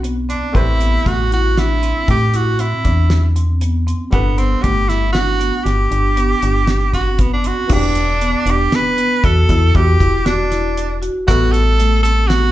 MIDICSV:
0, 0, Header, 1, 6, 480
1, 0, Start_track
1, 0, Tempo, 511073
1, 513, Time_signature, 7, 2, 24, 8
1, 11756, End_track
2, 0, Start_track
2, 0, Title_t, "Grand piano"
2, 0, Program_c, 0, 0
2, 0, Note_on_c, 0, 59, 62
2, 0, Note_on_c, 0, 69, 51
2, 0, Note_on_c, 0, 74, 65
2, 470, Note_off_c, 0, 59, 0
2, 478, Note_off_c, 0, 69, 0
2, 487, Note_off_c, 0, 74, 0
2, 493, Note_on_c, 0, 57, 63
2, 505, Note_on_c, 0, 67, 57
2, 514, Note_on_c, 0, 71, 60
2, 528, Note_on_c, 0, 72, 67
2, 3829, Note_off_c, 0, 57, 0
2, 3835, Note_off_c, 0, 67, 0
2, 3840, Note_off_c, 0, 71, 0
2, 3846, Note_off_c, 0, 72, 0
2, 3856, Note_on_c, 0, 55, 59
2, 3875, Note_on_c, 0, 78, 59
2, 3884, Note_on_c, 0, 69, 58
2, 3893, Note_on_c, 0, 71, 67
2, 7189, Note_off_c, 0, 55, 0
2, 7199, Note_off_c, 0, 78, 0
2, 7203, Note_off_c, 0, 69, 0
2, 7204, Note_on_c, 0, 52, 61
2, 7208, Note_off_c, 0, 71, 0
2, 7222, Note_on_c, 0, 62, 60
2, 7247, Note_on_c, 0, 67, 69
2, 10540, Note_off_c, 0, 52, 0
2, 10549, Note_off_c, 0, 62, 0
2, 10562, Note_off_c, 0, 67, 0
2, 10583, Note_on_c, 0, 57, 64
2, 10592, Note_on_c, 0, 55, 62
2, 10603, Note_on_c, 0, 71, 60
2, 10617, Note_on_c, 0, 69, 72
2, 11756, Note_off_c, 0, 55, 0
2, 11756, Note_off_c, 0, 57, 0
2, 11756, Note_off_c, 0, 69, 0
2, 11756, Note_off_c, 0, 71, 0
2, 11756, End_track
3, 0, Start_track
3, 0, Title_t, "Tenor saxophone"
3, 0, Program_c, 1, 66
3, 279, Note_on_c, 1, 62, 71
3, 524, Note_on_c, 1, 64, 85
3, 538, Note_off_c, 1, 62, 0
3, 1005, Note_on_c, 1, 66, 81
3, 1020, Note_off_c, 1, 64, 0
3, 1240, Note_off_c, 1, 66, 0
3, 1254, Note_on_c, 1, 66, 83
3, 1495, Note_on_c, 1, 64, 87
3, 1509, Note_off_c, 1, 66, 0
3, 1965, Note_off_c, 1, 64, 0
3, 1976, Note_on_c, 1, 67, 95
3, 2215, Note_on_c, 1, 66, 83
3, 2230, Note_off_c, 1, 67, 0
3, 2443, Note_on_c, 1, 64, 79
3, 2457, Note_off_c, 1, 66, 0
3, 3160, Note_off_c, 1, 64, 0
3, 3871, Note_on_c, 1, 59, 83
3, 4115, Note_on_c, 1, 60, 80
3, 4129, Note_off_c, 1, 59, 0
3, 4349, Note_on_c, 1, 67, 93
3, 4363, Note_off_c, 1, 60, 0
3, 4592, Note_on_c, 1, 64, 83
3, 4606, Note_off_c, 1, 67, 0
3, 4811, Note_off_c, 1, 64, 0
3, 4816, Note_on_c, 1, 66, 91
3, 5301, Note_on_c, 1, 67, 87
3, 5315, Note_off_c, 1, 66, 0
3, 6509, Note_off_c, 1, 67, 0
3, 6522, Note_on_c, 1, 66, 70
3, 6764, Note_on_c, 1, 59, 66
3, 6778, Note_off_c, 1, 66, 0
3, 6881, Note_off_c, 1, 59, 0
3, 6887, Note_on_c, 1, 62, 69
3, 7016, Note_on_c, 1, 66, 77
3, 7030, Note_off_c, 1, 62, 0
3, 7260, Note_on_c, 1, 62, 85
3, 7274, Note_off_c, 1, 66, 0
3, 7991, Note_on_c, 1, 67, 97
3, 8005, Note_off_c, 1, 62, 0
3, 8221, Note_on_c, 1, 71, 101
3, 8235, Note_off_c, 1, 67, 0
3, 8688, Note_on_c, 1, 69, 91
3, 8702, Note_off_c, 1, 71, 0
3, 9170, Note_on_c, 1, 67, 92
3, 9184, Note_off_c, 1, 69, 0
3, 9637, Note_off_c, 1, 67, 0
3, 9643, Note_on_c, 1, 62, 78
3, 10321, Note_off_c, 1, 62, 0
3, 10593, Note_on_c, 1, 66, 98
3, 10822, Note_on_c, 1, 69, 108
3, 10836, Note_off_c, 1, 66, 0
3, 11295, Note_off_c, 1, 69, 0
3, 11300, Note_on_c, 1, 69, 99
3, 11532, Note_on_c, 1, 66, 98
3, 11547, Note_off_c, 1, 69, 0
3, 11756, Note_off_c, 1, 66, 0
3, 11756, End_track
4, 0, Start_track
4, 0, Title_t, "Marimba"
4, 0, Program_c, 2, 12
4, 33, Note_on_c, 2, 59, 70
4, 207, Note_off_c, 2, 59, 0
4, 273, Note_on_c, 2, 60, 66
4, 448, Note_off_c, 2, 60, 0
4, 513, Note_on_c, 2, 60, 80
4, 688, Note_off_c, 2, 60, 0
4, 750, Note_on_c, 2, 59, 63
4, 926, Note_off_c, 2, 59, 0
4, 987, Note_on_c, 2, 57, 74
4, 1164, Note_off_c, 2, 57, 0
4, 1234, Note_on_c, 2, 64, 69
4, 1409, Note_off_c, 2, 64, 0
4, 1479, Note_on_c, 2, 62, 74
4, 1652, Note_off_c, 2, 62, 0
4, 1717, Note_on_c, 2, 60, 66
4, 2066, Note_off_c, 2, 60, 0
4, 2197, Note_on_c, 2, 64, 73
4, 2371, Note_off_c, 2, 64, 0
4, 2433, Note_on_c, 2, 60, 72
4, 2609, Note_off_c, 2, 60, 0
4, 2671, Note_on_c, 2, 62, 67
4, 3023, Note_off_c, 2, 62, 0
4, 3155, Note_on_c, 2, 60, 64
4, 3330, Note_off_c, 2, 60, 0
4, 3396, Note_on_c, 2, 59, 67
4, 3571, Note_off_c, 2, 59, 0
4, 3636, Note_on_c, 2, 60, 61
4, 3811, Note_off_c, 2, 60, 0
4, 3872, Note_on_c, 2, 62, 81
4, 4049, Note_off_c, 2, 62, 0
4, 4113, Note_on_c, 2, 59, 71
4, 4289, Note_off_c, 2, 59, 0
4, 4357, Note_on_c, 2, 57, 77
4, 4532, Note_off_c, 2, 57, 0
4, 4593, Note_on_c, 2, 64, 67
4, 4769, Note_off_c, 2, 64, 0
4, 4831, Note_on_c, 2, 62, 69
4, 5008, Note_off_c, 2, 62, 0
4, 5070, Note_on_c, 2, 59, 65
4, 5423, Note_off_c, 2, 59, 0
4, 5548, Note_on_c, 2, 62, 71
4, 5726, Note_off_c, 2, 62, 0
4, 5787, Note_on_c, 2, 59, 76
4, 5965, Note_off_c, 2, 59, 0
4, 6036, Note_on_c, 2, 62, 63
4, 6386, Note_off_c, 2, 62, 0
4, 6512, Note_on_c, 2, 60, 65
4, 6689, Note_off_c, 2, 60, 0
4, 6745, Note_on_c, 2, 59, 70
4, 6924, Note_off_c, 2, 59, 0
4, 6991, Note_on_c, 2, 60, 67
4, 7168, Note_off_c, 2, 60, 0
4, 7233, Note_on_c, 2, 62, 76
4, 7584, Note_off_c, 2, 62, 0
4, 7717, Note_on_c, 2, 59, 72
4, 7892, Note_off_c, 2, 59, 0
4, 7962, Note_on_c, 2, 62, 72
4, 8135, Note_off_c, 2, 62, 0
4, 8200, Note_on_c, 2, 59, 73
4, 8373, Note_off_c, 2, 59, 0
4, 8438, Note_on_c, 2, 59, 71
4, 8612, Note_off_c, 2, 59, 0
4, 8683, Note_on_c, 2, 66, 72
4, 8855, Note_off_c, 2, 66, 0
4, 8923, Note_on_c, 2, 64, 81
4, 9095, Note_off_c, 2, 64, 0
4, 9153, Note_on_c, 2, 66, 72
4, 9329, Note_off_c, 2, 66, 0
4, 9394, Note_on_c, 2, 64, 70
4, 9569, Note_off_c, 2, 64, 0
4, 9630, Note_on_c, 2, 66, 83
4, 9807, Note_off_c, 2, 66, 0
4, 9869, Note_on_c, 2, 64, 71
4, 10220, Note_off_c, 2, 64, 0
4, 10348, Note_on_c, 2, 66, 70
4, 10525, Note_off_c, 2, 66, 0
4, 10597, Note_on_c, 2, 59, 91
4, 10945, Note_off_c, 2, 59, 0
4, 11072, Note_on_c, 2, 57, 83
4, 11247, Note_off_c, 2, 57, 0
4, 11318, Note_on_c, 2, 60, 70
4, 11491, Note_off_c, 2, 60, 0
4, 11562, Note_on_c, 2, 59, 71
4, 11733, Note_off_c, 2, 59, 0
4, 11756, End_track
5, 0, Start_track
5, 0, Title_t, "FM bass"
5, 0, Program_c, 3, 39
5, 0, Note_on_c, 3, 35, 93
5, 340, Note_off_c, 3, 35, 0
5, 517, Note_on_c, 3, 33, 91
5, 926, Note_off_c, 3, 33, 0
5, 1003, Note_on_c, 3, 33, 78
5, 1821, Note_off_c, 3, 33, 0
5, 1960, Note_on_c, 3, 45, 86
5, 2574, Note_off_c, 3, 45, 0
5, 2680, Note_on_c, 3, 40, 81
5, 3705, Note_off_c, 3, 40, 0
5, 3877, Note_on_c, 3, 31, 107
5, 4287, Note_off_c, 3, 31, 0
5, 4364, Note_on_c, 3, 31, 80
5, 5182, Note_off_c, 3, 31, 0
5, 5313, Note_on_c, 3, 31, 90
5, 5520, Note_off_c, 3, 31, 0
5, 5554, Note_on_c, 3, 31, 83
5, 5966, Note_off_c, 3, 31, 0
5, 6039, Note_on_c, 3, 31, 86
5, 7064, Note_off_c, 3, 31, 0
5, 7234, Note_on_c, 3, 28, 99
5, 7851, Note_off_c, 3, 28, 0
5, 7945, Note_on_c, 3, 28, 88
5, 8155, Note_off_c, 3, 28, 0
5, 8679, Note_on_c, 3, 40, 93
5, 8883, Note_off_c, 3, 40, 0
5, 8920, Note_on_c, 3, 40, 95
5, 9124, Note_off_c, 3, 40, 0
5, 9160, Note_on_c, 3, 40, 112
5, 9363, Note_off_c, 3, 40, 0
5, 9397, Note_on_c, 3, 28, 83
5, 10422, Note_off_c, 3, 28, 0
5, 10599, Note_on_c, 3, 33, 111
5, 11756, Note_off_c, 3, 33, 0
5, 11756, End_track
6, 0, Start_track
6, 0, Title_t, "Drums"
6, 39, Note_on_c, 9, 42, 64
6, 133, Note_off_c, 9, 42, 0
6, 280, Note_on_c, 9, 42, 49
6, 373, Note_off_c, 9, 42, 0
6, 515, Note_on_c, 9, 36, 93
6, 516, Note_on_c, 9, 42, 65
6, 609, Note_off_c, 9, 36, 0
6, 610, Note_off_c, 9, 42, 0
6, 756, Note_on_c, 9, 42, 52
6, 850, Note_off_c, 9, 42, 0
6, 997, Note_on_c, 9, 36, 96
6, 998, Note_on_c, 9, 42, 69
6, 1091, Note_off_c, 9, 36, 0
6, 1092, Note_off_c, 9, 42, 0
6, 1240, Note_on_c, 9, 42, 50
6, 1334, Note_off_c, 9, 42, 0
6, 1479, Note_on_c, 9, 38, 93
6, 1479, Note_on_c, 9, 42, 68
6, 1573, Note_off_c, 9, 38, 0
6, 1573, Note_off_c, 9, 42, 0
6, 1718, Note_on_c, 9, 42, 56
6, 1812, Note_off_c, 9, 42, 0
6, 1954, Note_on_c, 9, 42, 70
6, 1956, Note_on_c, 9, 36, 88
6, 2048, Note_off_c, 9, 42, 0
6, 2050, Note_off_c, 9, 36, 0
6, 2194, Note_on_c, 9, 42, 56
6, 2288, Note_off_c, 9, 42, 0
6, 2432, Note_on_c, 9, 42, 80
6, 2526, Note_off_c, 9, 42, 0
6, 2674, Note_on_c, 9, 38, 29
6, 2674, Note_on_c, 9, 42, 57
6, 2677, Note_on_c, 9, 36, 70
6, 2768, Note_off_c, 9, 38, 0
6, 2768, Note_off_c, 9, 42, 0
6, 2771, Note_off_c, 9, 36, 0
6, 2912, Note_on_c, 9, 38, 100
6, 2912, Note_on_c, 9, 42, 82
6, 3006, Note_off_c, 9, 38, 0
6, 3006, Note_off_c, 9, 42, 0
6, 3156, Note_on_c, 9, 42, 55
6, 3250, Note_off_c, 9, 42, 0
6, 3393, Note_on_c, 9, 42, 71
6, 3486, Note_off_c, 9, 42, 0
6, 3643, Note_on_c, 9, 42, 47
6, 3737, Note_off_c, 9, 42, 0
6, 3874, Note_on_c, 9, 42, 69
6, 3877, Note_on_c, 9, 36, 98
6, 3968, Note_off_c, 9, 42, 0
6, 3971, Note_off_c, 9, 36, 0
6, 4114, Note_on_c, 9, 42, 50
6, 4208, Note_off_c, 9, 42, 0
6, 4356, Note_on_c, 9, 42, 70
6, 4358, Note_on_c, 9, 36, 93
6, 4450, Note_off_c, 9, 42, 0
6, 4452, Note_off_c, 9, 36, 0
6, 4599, Note_on_c, 9, 38, 30
6, 4599, Note_on_c, 9, 42, 54
6, 4693, Note_off_c, 9, 38, 0
6, 4693, Note_off_c, 9, 42, 0
6, 4834, Note_on_c, 9, 38, 98
6, 4834, Note_on_c, 9, 42, 68
6, 4928, Note_off_c, 9, 38, 0
6, 4928, Note_off_c, 9, 42, 0
6, 5078, Note_on_c, 9, 42, 56
6, 5172, Note_off_c, 9, 42, 0
6, 5318, Note_on_c, 9, 38, 27
6, 5318, Note_on_c, 9, 42, 66
6, 5412, Note_off_c, 9, 38, 0
6, 5412, Note_off_c, 9, 42, 0
6, 5557, Note_on_c, 9, 42, 51
6, 5651, Note_off_c, 9, 42, 0
6, 5795, Note_on_c, 9, 42, 69
6, 5889, Note_off_c, 9, 42, 0
6, 6033, Note_on_c, 9, 42, 55
6, 6127, Note_off_c, 9, 42, 0
6, 6269, Note_on_c, 9, 38, 103
6, 6269, Note_on_c, 9, 42, 82
6, 6363, Note_off_c, 9, 38, 0
6, 6363, Note_off_c, 9, 42, 0
6, 6514, Note_on_c, 9, 36, 59
6, 6515, Note_on_c, 9, 42, 55
6, 6607, Note_off_c, 9, 36, 0
6, 6608, Note_off_c, 9, 42, 0
6, 6749, Note_on_c, 9, 42, 74
6, 6752, Note_on_c, 9, 36, 93
6, 6843, Note_off_c, 9, 42, 0
6, 6846, Note_off_c, 9, 36, 0
6, 6989, Note_on_c, 9, 42, 53
6, 7083, Note_off_c, 9, 42, 0
6, 7226, Note_on_c, 9, 49, 97
6, 7231, Note_on_c, 9, 36, 98
6, 7231, Note_on_c, 9, 82, 51
6, 7320, Note_off_c, 9, 49, 0
6, 7325, Note_off_c, 9, 36, 0
6, 7325, Note_off_c, 9, 82, 0
6, 7469, Note_on_c, 9, 42, 57
6, 7563, Note_off_c, 9, 42, 0
6, 7714, Note_on_c, 9, 42, 75
6, 7808, Note_off_c, 9, 42, 0
6, 7950, Note_on_c, 9, 42, 58
6, 8044, Note_off_c, 9, 42, 0
6, 8193, Note_on_c, 9, 38, 99
6, 8193, Note_on_c, 9, 42, 77
6, 8287, Note_off_c, 9, 38, 0
6, 8287, Note_off_c, 9, 42, 0
6, 8433, Note_on_c, 9, 42, 57
6, 8527, Note_off_c, 9, 42, 0
6, 8676, Note_on_c, 9, 36, 99
6, 8678, Note_on_c, 9, 42, 74
6, 8770, Note_off_c, 9, 36, 0
6, 8772, Note_off_c, 9, 42, 0
6, 8915, Note_on_c, 9, 36, 70
6, 8915, Note_on_c, 9, 42, 57
6, 8916, Note_on_c, 9, 82, 41
6, 9009, Note_off_c, 9, 36, 0
6, 9009, Note_off_c, 9, 42, 0
6, 9010, Note_off_c, 9, 82, 0
6, 9156, Note_on_c, 9, 36, 102
6, 9158, Note_on_c, 9, 42, 72
6, 9163, Note_on_c, 9, 82, 19
6, 9250, Note_off_c, 9, 36, 0
6, 9252, Note_off_c, 9, 42, 0
6, 9256, Note_off_c, 9, 82, 0
6, 9394, Note_on_c, 9, 82, 18
6, 9396, Note_on_c, 9, 36, 76
6, 9399, Note_on_c, 9, 42, 60
6, 9488, Note_off_c, 9, 82, 0
6, 9490, Note_off_c, 9, 36, 0
6, 9493, Note_off_c, 9, 42, 0
6, 9637, Note_on_c, 9, 38, 110
6, 9637, Note_on_c, 9, 42, 83
6, 9731, Note_off_c, 9, 38, 0
6, 9731, Note_off_c, 9, 42, 0
6, 9877, Note_on_c, 9, 38, 34
6, 9877, Note_on_c, 9, 42, 60
6, 9877, Note_on_c, 9, 82, 18
6, 9971, Note_off_c, 9, 38, 0
6, 9971, Note_off_c, 9, 42, 0
6, 9971, Note_off_c, 9, 82, 0
6, 10120, Note_on_c, 9, 42, 83
6, 10126, Note_on_c, 9, 82, 20
6, 10214, Note_off_c, 9, 42, 0
6, 10220, Note_off_c, 9, 82, 0
6, 10355, Note_on_c, 9, 42, 55
6, 10449, Note_off_c, 9, 42, 0
6, 10597, Note_on_c, 9, 36, 106
6, 10599, Note_on_c, 9, 42, 76
6, 10602, Note_on_c, 9, 82, 60
6, 10691, Note_off_c, 9, 36, 0
6, 10693, Note_off_c, 9, 42, 0
6, 10696, Note_off_c, 9, 82, 0
6, 10838, Note_on_c, 9, 42, 61
6, 10931, Note_off_c, 9, 42, 0
6, 11078, Note_on_c, 9, 42, 84
6, 11172, Note_off_c, 9, 42, 0
6, 11316, Note_on_c, 9, 42, 62
6, 11410, Note_off_c, 9, 42, 0
6, 11552, Note_on_c, 9, 38, 98
6, 11552, Note_on_c, 9, 42, 73
6, 11646, Note_off_c, 9, 38, 0
6, 11646, Note_off_c, 9, 42, 0
6, 11756, End_track
0, 0, End_of_file